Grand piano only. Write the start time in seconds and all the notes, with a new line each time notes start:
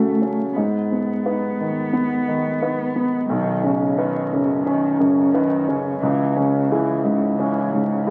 Already playing: C#3 C#4 F#4 A4
0.22 C#4
0.56 G#2
0.92 B3
1.26 D#4 B4
1.60 D#3
1.93 B3
2.28 D#3
2.62 D#4 B4
2.96 B3
3.29 B1
3.64 C#4
3.97 D#4 B4
4.33 F#2
4.66 C#4
5.00 F#2
5.34 D#4 B4
5.68 C#4
6.03 C#2
6.37 C#4
6.71 E4 G#4
7.04 G#2
7.39 C#4
7.73 G#2
8.06 E4